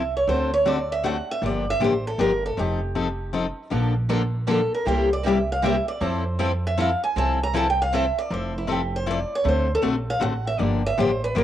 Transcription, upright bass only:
Already playing: C2
0.27 D2
1.42 G1
1.80 A1
2.18 G1
2.57 F1
3.72 A#1
4.86 C2
6.01 F2
7.16 C2
8.30 F1
9.45 D2
9.83 A#1
10.21 A1
10.60 G1
10.98 A1
11.37 G1

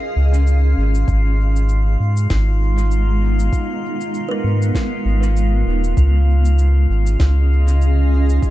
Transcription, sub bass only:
0.16 C#2
0.78 G#1
1.08 G#1
2.00 G#2
2.30 G#1
4.44 G#2
5.05 G#1
5.67 D#1
5.97 C#2
6.90 G#1
7.20 C#2

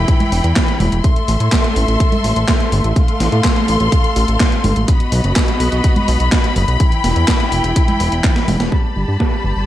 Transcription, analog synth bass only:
0.32 E1
0.44 E2
0.80 E1
0.92 E1
1.28 A1
1.40 A2
1.76 A1
1.88 A1
2.24 A1
2.36 A1
2.72 G1
2.84 A1
3.20 A1
3.32 A2
3.68 A1
3.80 A1
4.16 A1
4.28 A1
4.64 G1
4.76 A1
5.12 B1
5.24 F#1
5.60 B1
5.72 B1
6.08 B1
6.20 B1
6.56 F#1
6.68 B1
7.04 E1
7.16 E2
7.52 E1
7.64 E1
8.00 E1
8.12 E1
8.48 E1
8.60 E1
8.96 G1
9.08 G2
9.44 G1
9.56 G1

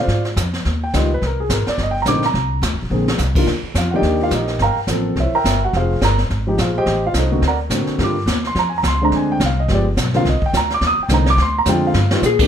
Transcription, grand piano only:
0.00 F4 C5 D5 F5
0.84 G5
0.94 D#3 G3 B3 F4 D#5
1.14 B4
1.26 A#4
1.40 G#4
1.54 A#4
1.69 D5
1.83 D#5
1.91 G5
2.02 A#5
2.07 D3 A#3 C4 D#4 D6
2.26 A#5
2.91 D3 A#3 C4 G#4
3.37 D#3 A#3 D4 F4
3.78 F4 F5
3.94 D#3 A#3 D4 G4 D5 D#5 G5
4.23 F4 F5
4.34 D#4 G4 A#4 D#5
4.62 A#4 F5 G5 A#5
4.90 F3 A#3 C4 A4
5.20 E4 C5 C#5 E5
5.35 A#4 E5 G5 A#5
5.65 F#4 F#5
5.76 F4 G#4 C5 F5
6.04 A#4 A#5
6.47 F3 G#3 D#4 G4
6.61 F4 G#4 C5 F5
6.78 G4 C5 D#5 G5
7.07 F4 F5
7.17 D#4 A4 C5 D#5
7.32 D3 A#3 C4 F#4
7.48 A#4 D5 F#5 A#5
7.70 D3 A#3 C4 F#4
7.99 D3 G3 A#3 F4
8.04 D6
8.47 C6
8.59 A#5
8.70 G#5
8.78 A#5
8.88 C6
9.02 D3 G#3 C4 D4 A#5
9.16 G#5
9.32 G5
9.46 F5
9.60 D#5
9.70 F3 G#3 B3 G4
9.74 D5
10.15 D3 A#3 C4 F4 F5
10.29 D#5
10.46 G5
10.57 A#5
10.74 D6
10.87 D#6
11.03 G5
11.11 D3 A#3 C4 D#4 A#5
11.30 D6
11.42 C6
11.59 A#5
11.67 D3 G#3 C4 F4 G5
11.87 F5
12.11 D#3 G3 B3 F4
12.40 C3 D#3 A#3 D4

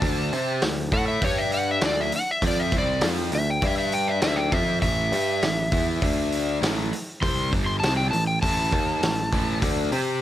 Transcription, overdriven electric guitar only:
0.02 D3 A3 D4
0.33 C4 G4 C5
0.62 D3 A3
0.92 A3 E4 A4
1.22 G3 D4 G4
1.81 D3 A3 D4
2.42 F3 C4 F4
2.72 C3 G3 C4
3.01 F3 C4 F4
3.33 D3 A3
3.61 G3 D4 G4
4.21 D3 A3 D4
4.51 F3 C4 F4
4.82 A2 E3 A3
5.12 G3 D4 G4
5.43 A2 E3
5.72 E3 B3 E4
6.02 D3 A3 D4
6.61 A2 E3 A3
7.21 C3 G3 C4
7.51 G2 D3 G3
7.82 C3 G3 C4
8.13 A2 E3
8.43 A2 E3 A3
8.71 D#3 A#3 D#4
9.02 A2 E3
9.32 A2 E3 A3
9.61 D3 A3 D4
9.92 C4 G4 C5

